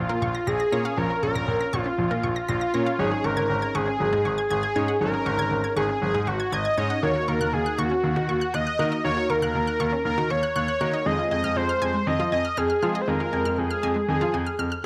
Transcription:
Already playing: F4
0.09 A#2 A#4
0.22 A#1 C#6
0.35 A#6
0.47 A#1 G#4 A#6
0.60 A#6
0.72 A#2 C#4 F4 A#4 C#5 A#6
0.85 F5
0.97 A#1 F3 C#4 F4 A#4 C#5
1.10 A#4
1.23 A#1 A#4 C#6
1.35 A#1 A#6
1.48 A#1
1.61 A#6
1.73 A#1 F4 C#6
1.86 C#4
1.98 A#1 F3
2.11 A#2 A#4
2.23 A#1 C#6
2.36 A#6
2.48 A#1 F4 A#6
2.61 A#6
2.74 A#2 C#4 F4 A#4 C#5 A#6
2.86 F5
2.99 G#1 F#3 C#4 D#4 G#4 C#5
3.12 G#4
3.24 G#1 A#4 C#6
3.37 G#1 G#6
3.50 G#1
3.62 G#6
3.75 G#1 G#4 C#6
3.87 C#4
4.00 G#1 F#3
4.13 G#2 G#4
4.25 G#1 C#6
4.38 G#6
4.50 G#1 G#4 G#6
4.63 G#6
4.76 G#2 C#4 D#4 G#4 C#5 G#6
4.88 F#5
5.01 G#1 F#3 C#4 D#4 G#4 A#4 C#5
5.14 G#4
5.26 G#1 C#6
5.39 G#1 G#6
5.51 G#1
5.64 G#6
5.76 G#1 G#4 C#6
5.89 C#4
6.02 G#1 F#3 G#4
6.14 G#2 G#4
6.27 G#1 F#4 C#6
6.40 G#6
6.52 G#1 D#5 G#6
6.65 G#6
6.77 G#2 C#4 D#4 G#4 C#5 G#6
6.90 F#5
7.03 D#2 D#3 A#3 D#4 F#4 A#4 C#5
7.15 F#4
7.28 D#2 A#4 C#6
7.41 D#2 F#6
7.53 D#2 G#4
7.66 F#6
7.78 D#2 F#4 C#6
7.91 C#4
8.04 D#2 D#3
8.16 D#3 F#4
8.29 D#2 C#6
8.41 F#6
8.54 D#2 D#5 F#6
8.67 F#6
8.79 D#3 A#3 D#4 F#4 A#4 F#6
8.92 D#5
9.04 D#2 D#3 A#3 D#4 F#4 A#4 C#5
9.17 F#4
9.29 D#2 A#4 C#6
9.42 D#2 F#6
9.55 D#2
9.67 F#6
9.80 D#2 C#6
9.92 C#4
10.05 D#2 D#3 A#4
10.18 D#3 F#4
10.30 D#2 C#5 C#6
10.43 F#6
10.56 D#2 C#5 F#6
10.68 F#6
10.81 D#3 A#3 D#4 F#4 A#4 F#6
10.93 D#5
11.06 F2 D#3 G#3 C4 F4 G#4 D#5
11.19 F4
11.31 F2 D#5 G#5
11.44 F2 F6
11.56 F2 C5
11.69 F6
11.82 F2 G#5
11.94 G#3
12.07 F2 D#3 D#5
12.19 F3 F4
12.32 F2 D#5 G#5
12.45 F6
12.57 F2 G#4 F6
12.70 F6
12.82 F3 G#3 C4 F4 G#4 F6
12.95 D#5
13.01 C5
13.08 F2 D#3 G#3 C4 F4 G#4 A#4
13.20 F4
13.33 F2 G#5
13.45 F2 F6
13.51 A#4
13.58 F2 G#4
13.70 F6
13.83 F2 G#5
13.96 G#3
14.08 F2 D#3 G#4
14.21 F3 F4
14.34 F2 G#5
14.46 F6
14.59 F2 F6
14.72 F6

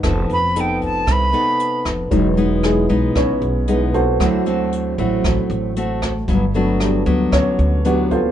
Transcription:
0.03 F1 F3 B3 D#4 A4, kick, cross-stick, closed hi-hat
0.30 F1 B4 B5, closed hi-hat
0.56 B3 D#4 A4 G5, closed hi-hat
0.81 A5, kick, closed hi-hat
1.07 C2 C3, kick, cross-stick, closed hi-hat
1.11 B5
1.33 B3 D#4 A4, closed hi-hat
1.60 closed hi-hat
1.85 F1, kick, cross-stick, closed hi-hat
2.11 E1 E3 F#3 G#3 B3 D#4, kick, closed hi-hat
2.37 G#3 B3 D#4, closed hi-hat
2.63 G#3 D#4 E4 G#4, cross-stick, closed hi-hat
2.89 B1 G#3 B3 D#4, kick, closed hi-hat
3.15 B1 B2 C#4 C#5, kick, cross-stick, closed hi-hat
3.42 B1, closed hi-hat
3.68 G#3 B3 D#4 E4 G#4 B4, closed hi-hat
3.94 C4 F#4 A4 C5, kick, closed hi-hat
4.20 D2 D3 F#3 A3 C4 E4 F#4, kick, cross-stick, closed hi-hat
4.46 A3 C4 F#4, closed hi-hat
4.72 closed hi-hat
4.98 A1 F#3 A3 C4 E4 F#4, kick, closed hi-hat
5.24 A1 A2, kick, cross-stick, closed hi-hat
5.50 A1, closed hi-hat
5.76 A3 C4 F#4, closed hi-hat
6.02 kick, cross-stick, closed hi-hat
6.28 G1 G2 F#3 B3 D4, kick, closed hi-hat
6.54 F#3 A3 B3 D4 F#4, closed hi-hat
6.80 G3 B3 D4 G4, cross-stick, closed hi-hat
7.06 D2 F#3 B3 D4, kick, closed hi-hat
7.32 D2 D3 C#4 C#5, kick, cross-stick, closed hi-hat
7.58 D2, closed hi-hat
7.85 F#3 B3 D4 F#4 G4 B4, closed hi-hat
8.11 C4 F4 A4 C5, kick, closed hi-hat

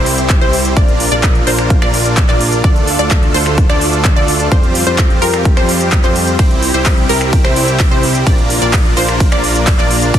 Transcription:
Already playing: C2 C3 G3 C4 E4 G4 C5
0.06 open hi-hat
0.18 closed hi-hat
0.30 kick, clap, closed hi-hat
0.41 C2 G3 C4 E4 G4 C5, closed hi-hat
0.53 open hi-hat
0.65 closed hi-hat
0.77 A#1 A#3 D4 F4 A#4 D5, kick, closed hi-hat
0.88 closed hi-hat
1.00 open hi-hat
1.12 A#1 A#3 D4 F4 A#4 D5, closed hi-hat
1.23 kick, clap, closed hi-hat
1.35 closed hi-hat
1.47 A#1 A#3 D4 F4 A#4 C5, open hi-hat
1.59 finger snap, closed hi-hat
1.70 kick, closed hi-hat
1.82 A#1 A#3 D4 F4 A#4 D5, finger snap, closed hi-hat
1.94 open hi-hat
2.06 closed hi-hat
2.17 kick, clap, closed hi-hat
2.29 A#1 A#3 D4 F4 A#4 D5, clap, closed hi-hat
2.41 open hi-hat
2.52 closed hi-hat
2.64 D2 D3 A3 F4 A4 D5, kick, closed hi-hat
2.76 closed hi-hat
2.88 open hi-hat
2.99 D2 A3 D4 F4 A4 D5, closed hi-hat
3.11 kick, clap, closed hi-hat
3.23 closed hi-hat
3.34 D2 A3 D4 F4 A4 C5, open hi-hat
3.46 finger snap, closed hi-hat
3.58 kick, closed hi-hat
3.69 D2 A3 D4 F4 A4 D5, finger snap, closed hi-hat
3.81 open hi-hat
3.93 closed hi-hat
4.05 kick, clap, closed hi-hat
4.16 D2 A3 D4 F4 A4 D5, closed hi-hat
4.28 open hi-hat
4.40 closed hi-hat
4.52 F2 G3 C4 F4 G4 C5, kick, closed hi-hat
4.63 closed hi-hat
4.75 open hi-hat
4.87 F2 G3 C4 F4 G4 C5, closed hi-hat
4.98 kick, clap, closed hi-hat
5.10 closed hi-hat
5.22 F2 G3 C4 F4 G4 A#4, open hi-hat
5.34 finger snap, closed hi-hat
5.45 kick, closed hi-hat
5.57 F2 G3 C4 F4 G4 C5, finger snap, closed hi-hat
5.69 open hi-hat
5.81 closed hi-hat
5.92 kick, clap, closed hi-hat
6.04 F2 G3 C4 F4 G4 C5, clap, closed hi-hat
6.16 open hi-hat
6.27 closed hi-hat
6.39 C2 C3 E4 G4 C5, kick, closed hi-hat, ride
6.51 closed hi-hat
6.62 open hi-hat
6.74 C2 G3 C4 E4 G4 C5, closed hi-hat
6.86 kick, clap, closed hi-hat, ride
6.98 closed hi-hat
7.09 C2 G3 C4 E4 G4 A#4, open hi-hat
7.21 finger snap, closed hi-hat
7.33 kick, closed hi-hat, ride
7.44 C2 G3 C4 E4 G4 C5, finger snap, closed hi-hat
7.56 open hi-hat
7.68 closed hi-hat
7.80 kick, clap, closed hi-hat, ride
7.91 C2 G3 C4 E4 G4 C5, closed hi-hat
8.03 open hi-hat
8.15 closed hi-hat
8.27 A#1 A#3 D4 F4 A#4 D5, kick, closed hi-hat, ride
8.38 closed hi-hat
8.50 open hi-hat
8.62 A#1 A#3 D4 F4 A#4 D5, closed hi-hat
8.73 kick, clap, closed hi-hat, ride
8.85 closed hi-hat
8.97 A#1 A#3 D4 F4 A#4 C5, open hi-hat
9.09 finger snap, closed hi-hat
9.20 kick, closed hi-hat, ride
9.32 A#1 A#3 D4 F4 A#4 D5, finger snap, closed hi-hat
9.44 open hi-hat
9.55 closed hi-hat
9.67 kick, clap, closed hi-hat, ride
9.79 A#1 A#3 D4 F4 A#4 D5, clap, closed hi-hat
9.91 open hi-hat
10.02 closed hi-hat
10.14 D2 D3 A3 D4 A4 D5, kick, closed hi-hat, ride

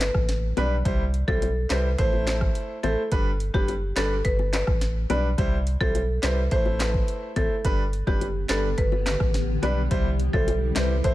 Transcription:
Already playing: G1, impact
0.00 B4, snare, clap, closed hi-hat, high bongo
0.15 A1, kick, cross-stick
0.29 snare, closed hi-hat
0.57 B1 G3 D4 B4 D5, closed hi-hat, high bongo, low bongo
0.85 C2 G3 E4 C5, kick, closed hi-hat
1.14 closed hi-hat
1.28 B1 G3 E4 A4 C5, kick, high bongo
1.42 closed hi-hat, high bongo
1.70 C2 G3 E4 B4 C5, snare, clap, closed hi-hat
1.98 A1 A3 E4 C5, kick, closed hi-hat
2.13 high bongo
2.27 C5, snare, clap, closed hi-hat, high bongo
2.41 kick, cross-stick
2.55 closed hi-hat
2.83 A1 A3 E4 A4 C5, closed hi-hat, high bongo, low bongo
3.12 G1 G3 D4 B4, kick, closed hi-hat
3.40 closed hi-hat
3.54 F#1 G3 D4 G4 B4, kick, high bongo
3.68 closed hi-hat, high bongo
3.96 G1 G3 D4 A4 B4, snare, clap, closed hi-hat
4.25 G1 B4, kick, closed hi-hat
4.39 high bongo
4.53 B4, snare, clap, closed hi-hat, high bongo
4.67 A1, kick, cross-stick
4.81 snare, closed hi-hat
5.10 B1 G3 D4 B4 D5, closed hi-hat, high bongo, low bongo
5.38 C2 G3 E4 C5, kick, closed hi-hat
5.67 closed hi-hat
5.80 B1 G3 E4 A4 C5, kick, high bongo
5.95 closed hi-hat, high bongo
6.23 C2 G3 E4 B4 C5, snare, clap, closed hi-hat
6.51 A1 A3 E4 C5, kick, closed hi-hat
6.66 high bongo
6.80 B4, snare, clap, closed hi-hat, high bongo
6.94 kick
7.08 closed hi-hat
7.36 A1 A3 E4 A4 C5, kick, closed hi-hat, high bongo, low bongo
7.65 G1 D3 G3 B3 D4 G4 B4, kick, closed hi-hat
7.93 closed hi-hat
8.07 F#1 G3 D4 G4 B4, kick, high bongo
8.21 closed hi-hat, high bongo
8.49 G1 G3 D4 A4 B4, snare, clap, closed hi-hat
8.78 G1 B4, kick, closed hi-hat
8.92 high bongo
9.06 B4, snare, clap, closed hi-hat, high bongo
9.20 A1, kick, cross-stick
9.34 snare, closed hi-hat
9.62 B1 G3 D4 B4 D5, closed hi-hat, high bongo, low bongo
9.91 C2 G3 C4 E4 C5, kick, closed hi-hat
10.20 closed hi-hat
10.33 B1 G3 E4 A4 C5, kick, high bongo
10.48 closed hi-hat, high bongo
10.75 C2 G3 E4 B4 C5, snare, clap, closed hi-hat
11.04 A1 A3 E4 C5, kick, closed hi-hat

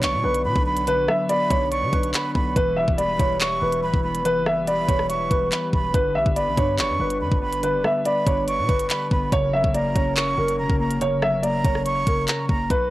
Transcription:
Already playing: D3 F#3 B3 D4 B4 C#5, impact
0.03 A#1 D5 C#6, clap, closed hi-hat
0.13 B2
0.24 B1 D3 B4
0.34 closed hi-hat
0.45 B2 B5
0.56 B1, kick
0.66 B3 B5
0.77 closed hi-hat
0.87 D3 B4, closed hi-hat
0.98 A#1
1.08 F#3 E5, cross-stick
1.29 B3 D5 B5, closed hi-hat
1.50 B1 D4 C#5, kick, closed hi-hat
1.72 D5 C#6, closed hi-hat
1.82 D3
1.92 B1 D3 B4, kick, closed hi-hat
2.03 closed hi-hat
2.14 B5, clap, closed hi-hat
2.35 B1 B3 B5, kick
2.56 E1 E3 G3 E4 B4, kick, closed hi-hat
2.76 G3 E5
2.88 E1, kick
2.98 B3 D5 B5, closed hi-hat
3.19 E1 E4 C#5, kick, closed hi-hat
3.40 E5 C#6, clap, closed hi-hat
3.62 E1 E3 B4
3.72 closed hi-hat
3.83 D1 B5
3.94 E1, kick
4.04 B3 B5
4.15 closed hi-hat
4.25 E3 B4, closed hi-hat
4.36 F#1
4.46 G3 E5, cross-stick
4.62 E1
4.67 B3 D5 B5, closed hi-hat
4.88 E1 E4 C#5, kick, closed hi-hat
4.99 cross-stick
5.09 E5 C#6, closed hi-hat
5.30 E1 E3 B4, kick, closed hi-hat
5.52 B5, clap, closed hi-hat
5.73 E1 B3 B5, kick
5.94 G1 D3 D4 B4, kick, closed hi-hat
6.15 A#1 G3 E5
6.26 G1, kick
6.36 B3 D5 B5, closed hi-hat
6.47 A#1
6.57 G2 D4 C#5, kick, closed hi-hat
6.79 F#1 D5 C#6, clap, closed hi-hat
6.89 G2
7.00 G1 D3 B4
7.10 closed hi-hat
7.21 G2 B5
7.32 G1, kick
7.42 B3 B5
7.53 closed hi-hat
7.63 D3 B4, closed hi-hat
7.74 F#1
7.84 G3 E5, cross-stick
8.05 B3 D5 B5, closed hi-hat
8.26 G1 D4 C#5, kick, closed hi-hat
8.48 D5 C#6, closed hi-hat
8.58 B2
8.68 G1 D3 B4, kick, closed hi-hat
8.79 closed hi-hat
8.90 B5, clap, closed hi-hat
9.11 G1 B3 B5, kick
9.32 F#1 C#3 F#3 A#3 C#4 A#4 C#5, kick, closed hi-hat
9.53 F#3 E5
9.64 F#1, kick
9.74 A#3 D5 A#5, closed hi-hat
9.95 F#1 C#4 C#5, kick, closed hi-hat
10.17 C#5 C#6, clap, closed hi-hat
10.38 F#1 C#3 A#4
10.48 closed hi-hat
10.59 E1 A#5
10.70 F#1, kick
10.80 A#3 A#5
10.91 closed hi-hat
11.01 C#3 C#5, closed hi-hat
11.12 G1
11.22 F#3 E5, cross-stick
11.38 F#1
11.43 A#3 D5 A#5, closed hi-hat
11.64 F#1 C#4 C#5, kick, closed hi-hat
11.75 cross-stick
11.85 C#5 C#6, closed hi-hat
12.07 F#1 C#3 A#4, kick, closed hi-hat
12.28 A#5, clap, closed hi-hat
12.49 F#1 A#3 A#5, kick
12.70 B1 B4, kick, closed hi-hat

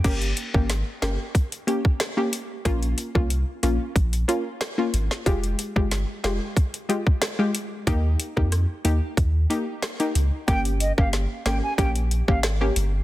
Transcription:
0.04 G1 A#3 C#4 G4, kick, closed hi-hat, crash
0.22 closed hi-hat
0.37 closed hi-hat
0.54 G#1 A#3 C#4 G4, kick
0.70 snare, closed hi-hat
1.02 G1 A#3 C#4 G4, cross-stick, snare, closed hi-hat
1.35 kick, closed hi-hat
1.52 closed hi-hat
1.67 A#3 C#4 G4, closed hi-hat
1.85 kick
2.00 cross-stick, snare, closed hi-hat
2.17 A#3 C#4 G4
2.33 closed hi-hat
2.65 A#1 A#3 C#4 F4, kick, closed hi-hat
2.83 closed hi-hat
2.98 closed hi-hat
3.15 C2 A#3 C#4 F4, kick
3.30 closed hi-hat
3.63 A#1 A#3 C#4 F4, closed hi-hat
3.96 A#1, kick, closed hi-hat
4.13 closed hi-hat
4.28 A#3 C#4 F4, closed hi-hat
4.61 cross-stick, snare, closed hi-hat
4.78 A#3 C#4 F4
4.94 G#1, closed hi-hat
5.11 snare
5.26 F1 G#3 F4 G4, kick, closed hi-hat
5.44 closed hi-hat
5.59 closed hi-hat
5.76 G1 G#3 F4 G4, kick
5.91 snare, closed hi-hat
6.24 F1 G#3 F4 G4, cross-stick, snare, closed hi-hat
6.57 kick, closed hi-hat
6.74 closed hi-hat
6.89 G#3 F4 G4, closed hi-hat
7.07 kick
7.22 cross-stick, snare, closed hi-hat
7.39 G#3 F4 G4
7.55 closed hi-hat
7.87 D#2 A#3 D#4 G4, kick, closed hi-hat
8.20 closed hi-hat
8.37 F2 A#3 D#4 G4, kick
8.52 cross-stick, closed hi-hat
8.85 D#2 A#3 D#4 G4, closed hi-hat
9.17 D#2, kick, closed hi-hat
9.50 A#3 D#4 G4, closed hi-hat
9.82 cross-stick, snare, closed hi-hat
10.00 A#3 D#4 G4, closed hi-hat
10.15 C#2, closed hi-hat
10.48 G1 A#3 C#4 G4 G5, kick, closed hi-hat
10.65 closed hi-hat
10.80 D#5, closed hi-hat
10.98 G1 A#3 C#4 G4 F5, kick
11.13 snare, closed hi-hat
11.46 G#1 A#3 C#4 G4 G5, cross-stick, snare, closed hi-hat
11.63 G#5
11.78 A#1 A#3 C#4 G4 G5, kick, closed hi-hat
11.96 closed hi-hat
12.11 closed hi-hat
12.28 G#1 A#3 C#4 G4 F5, kick
12.43 cross-stick, snare, closed hi-hat
12.61 A#3 C#4 G4
12.76 G1, closed hi-hat

